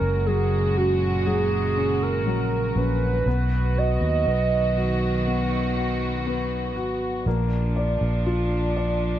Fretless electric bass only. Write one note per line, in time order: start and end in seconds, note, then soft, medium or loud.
0.02 2.26 F#1 medium
2.26 2.73 A#1 medium
2.76 3.23 A#1 medium
3.26 3.97 B1 medium
4.01 4.24 D#2 medium
4.27 6.76 B1 medium
6.76 7.23 G#1 medium
7.26 7.97 A#1 medium
8.01 9.19 A#1 medium